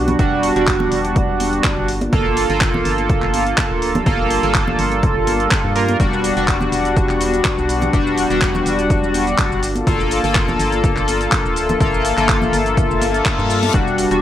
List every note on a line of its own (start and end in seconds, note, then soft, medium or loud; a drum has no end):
0.00 0.15 B1 medium
0.00 0.16 G3 medium
0.00 1.85 G3 medium
0.00 1.85 B3 medium
0.00 0.16 D4 medium
0.00 1.85 D4 medium
0.00 0.16 F#4 medium
0.00 1.85 F#4 medium
0.08 closed hi-hat medium
0.08 high conga medium
0.08 low conga medium
0.19 0.52 E1 loud
0.19 0.53 G3 medium
0.19 0.53 D4 medium
0.19 0.53 F#4 loud
0.19 kick loud
0.19 closed hi-hat medium
0.43 open hi-hat loud
0.56 0.88 E1 medium
0.56 1.87 G3 medium
0.56 1.87 D4 medium
0.56 1.87 F#4 loud
0.56 closed hi-hat medium
0.67 kick loud
0.67 clap loud
0.67 closed hi-hat medium
0.80 high conga loud
0.80 low conga medium
0.92 1.25 E1 medium
0.92 open hi-hat medium
1.05 closed hi-hat soft
1.16 kick loud
1.16 closed hi-hat medium
1.29 1.61 E1 loud
1.40 open hi-hat loud
1.40 high conga medium
1.53 closed hi-hat soft
1.64 kick loud
1.64 clap loud
1.64 closed hi-hat medium
1.77 2.09 G1 medium
1.88 5.96 A#3 medium
1.88 13.70 D4 medium
1.88 3.80 F4 medium
1.88 5.96 A4 medium
1.88 open hi-hat medium
2.01 closed hi-hat soft
2.01 high conga medium
2.13 2.46 G1 loud
2.13 2.47 A#3 medium
2.13 2.47 F4 medium
2.13 2.47 A4 loud
2.13 kick loud
2.13 closed hi-hat medium
2.37 open hi-hat loud
2.50 2.82 G1 medium
2.50 4.04 A#3 medium
2.50 4.04 F4 medium
2.50 4.04 A4 medium
2.50 closed hi-hat soft
2.61 kick loud
2.61 clap loud
2.61 closed hi-hat medium
2.74 high conga medium
2.74 low conga medium
2.85 3.18 G1 medium
2.85 open hi-hat medium
2.98 closed hi-hat soft
3.09 kick loud
3.09 closed hi-hat medium
3.22 3.54 G1 loud
3.22 clap soft
3.34 open hi-hat loud
3.34 high conga medium
3.47 closed hi-hat soft
3.58 kick loud
3.58 clap loud
3.58 closed hi-hat medium
3.71 4.03 D1 medium
3.82 9.59 G3 medium
3.82 open hi-hat medium
3.95 closed hi-hat soft
3.95 high conga loud
3.95 low conga medium
4.06 4.39 G1 loud
4.06 4.40 A#3 medium
4.06 4.40 F4 medium
4.06 4.40 A4 loud
4.06 kick loud
4.06 closed hi-hat medium
4.30 open hi-hat loud
4.43 4.75 G1 medium
4.43 5.73 A#3 medium
4.43 5.73 F4 medium
4.43 5.73 A4 loud
4.43 closed hi-hat soft
4.54 kick loud
4.54 clap loud
4.54 closed hi-hat medium
4.67 high conga medium
4.67 low conga medium
4.79 5.12 G1 medium
4.79 open hi-hat medium
4.92 closed hi-hat soft
5.03 kick loud
5.03 closed hi-hat medium
5.16 5.48 G1 medium
5.27 open hi-hat loud
5.27 high conga medium
5.40 closed hi-hat soft
5.51 kick loud
5.51 clap loud
5.51 closed hi-hat medium
5.64 5.96 G2 medium
5.75 5.97 A#3 medium
5.75 5.97 F4 medium
5.75 5.97 A#4 medium
5.75 open hi-hat medium
5.88 closed hi-hat soft
5.88 high conga loud
6.00 6.33 E1 loud
6.00 6.34 G3 medium
6.00 9.59 B3 medium
6.00 6.34 D4 medium
6.00 6.34 F#4 loud
6.00 9.59 F#4 medium
6.00 kick loud
6.00 closed hi-hat medium
6.00 shaker soft
6.13 shaker soft
6.24 open hi-hat loud
6.24 shaker medium
6.37 6.69 E1 medium
6.37 7.91 G3 medium
6.37 7.91 D4 medium
6.37 7.91 F#4 medium
6.37 closed hi-hat soft
6.37 shaker soft
6.48 kick loud
6.48 clap loud
6.48 closed hi-hat medium
6.48 shaker soft
6.61 high conga medium
6.61 low conga medium
6.61 shaker soft
6.72 7.05 E1 medium
6.72 open hi-hat medium
6.72 shaker medium
6.85 closed hi-hat soft
6.85 shaker soft
6.96 kick loud
6.96 closed hi-hat medium
6.96 shaker soft
7.09 7.41 E1 loud
7.09 clap soft
7.09 shaker soft
7.21 open hi-hat loud
7.21 high conga medium
7.21 shaker medium
7.34 closed hi-hat soft
7.34 shaker soft
7.45 kick loud
7.45 clap loud
7.45 closed hi-hat medium
7.45 shaker soft
7.58 7.90 B1 medium
7.58 shaker soft
7.69 open hi-hat medium
7.69 shaker medium
7.81 closed hi-hat soft
7.81 high conga medium
7.81 low conga medium
7.81 shaker soft
7.93 8.26 E1 loud
7.93 8.27 G3 medium
7.93 8.27 D4 medium
7.93 8.27 F#4 loud
7.93 kick loud
7.93 closed hi-hat medium
7.93 shaker soft
8.07 shaker soft
8.18 open hi-hat loud
8.18 shaker medium
8.30 8.62 E1 medium
8.30 9.61 G3 medium
8.30 9.61 D4 medium
8.30 9.61 F#4 loud
8.30 closed hi-hat soft
8.30 shaker soft
8.41 kick loud
8.41 clap loud
8.41 closed hi-hat medium
8.41 shaker soft
8.54 high conga medium
8.54 low conga medium
8.54 shaker soft
8.66 8.99 E1 medium
8.66 open hi-hat medium
8.66 shaker medium
8.79 closed hi-hat soft
8.79 shaker soft
8.90 kick loud
8.90 closed hi-hat medium
8.90 shaker soft
9.03 9.35 E1 loud
9.03 shaker soft
9.14 open hi-hat loud
9.14 high conga medium
9.14 shaker medium
9.27 closed hi-hat soft
9.27 shaker soft
9.38 kick loud
9.38 clap loud
9.38 closed hi-hat medium
9.38 shaker soft
9.51 9.83 G1 medium
9.51 shaker soft
9.63 13.70 A#3 medium
9.63 11.54 F4 medium
9.63 13.70 A4 medium
9.63 open hi-hat medium
9.63 shaker medium
9.75 closed hi-hat soft
9.75 high conga medium
9.75 shaker soft
9.87 10.20 G1 loud
9.87 10.21 A#3 medium
9.87 10.21 F4 medium
9.87 10.21 A4 loud
9.87 kick loud
9.87 closed hi-hat medium
9.87 shaker soft
10.00 shaker soft
10.11 open hi-hat loud
10.11 shaker medium
10.24 10.56 G1 medium
10.24 11.78 A#3 medium
10.24 11.78 F4 medium
10.24 11.78 A4 medium
10.24 closed hi-hat medium
10.24 shaker soft
10.35 kick loud
10.35 clap loud
10.35 closed hi-hat medium
10.35 shaker soft
10.48 high conga medium
10.48 low conga medium
10.48 shaker soft
10.59 10.92 G1 loud
10.59 open hi-hat medium
10.59 shaker medium
10.72 closed hi-hat medium
10.72 shaker soft
10.84 kick loud
10.84 closed hi-hat medium
10.84 shaker soft
10.96 11.28 G1 loud
10.96 clap soft
10.96 shaker soft
11.08 open hi-hat loud
11.08 high conga medium
11.08 shaker medium
11.21 closed hi-hat medium
11.21 shaker soft
11.32 kick loud
11.32 clap loud
11.32 closed hi-hat medium
11.32 shaker soft
11.45 11.77 D1 medium
11.45 shaker soft
11.56 13.72 E5 medium
11.56 open hi-hat medium
11.56 shaker medium
11.69 closed hi-hat medium
11.69 high conga medium
11.69 low conga medium
11.69 shaker soft
11.80 12.13 G1 loud
11.80 12.14 A#3 medium
11.80 12.14 F4 medium
11.80 12.14 A4 loud
11.80 kick loud
11.80 closed hi-hat medium
11.80 shaker soft
11.94 shaker soft
12.05 open hi-hat loud
12.05 shaker medium
12.17 12.49 G1 medium
12.17 13.71 A#3 medium
12.17 13.71 F4 medium
12.17 13.71 A4 loud
12.17 clap soft
12.17 closed hi-hat medium
12.17 shaker soft
12.29 kick loud
12.29 clap loud
12.29 closed hi-hat medium
12.29 shaker soft
12.41 high conga medium
12.41 low conga medium
12.41 shaker soft
12.53 12.86 G1 medium
12.53 open hi-hat medium
12.53 shaker medium
12.66 closed hi-hat medium
12.66 shaker soft
12.77 kick loud
12.77 closed hi-hat medium
12.77 reverse cymbal medium
12.77 shaker soft
12.90 13.22 G1 loud
12.90 shaker soft
13.02 open hi-hat loud
13.02 high conga medium
13.02 shaker medium
13.14 closed hi-hat medium
13.14 shaker soft
13.25 kick loud
13.25 clap loud
13.25 closed hi-hat medium
13.25 shaker soft
13.38 13.70 G2 medium
13.38 shaker soft
13.50 open hi-hat medium
13.50 shaker medium
13.63 closed hi-hat medium
13.63 high conga medium
13.63 shaker soft
13.74 14.07 E1 loud
13.74 14.08 G3 medium
13.74 14.22 G3 medium
13.74 14.22 B3 medium
13.74 14.08 D4 medium
13.74 14.22 D4 medium
13.74 14.08 F#4 loud
13.74 14.22 F#4 medium
13.74 kick loud
13.74 closed hi-hat medium
13.74 shaker soft
13.88 shaker soft
13.98 open hi-hat loud
13.98 shaker medium
14.11 14.22 E1 medium
14.11 14.22 G3 medium
14.11 14.22 D4 medium
14.11 14.22 F#4 medium
14.11 closed hi-hat medium
14.11 shaker soft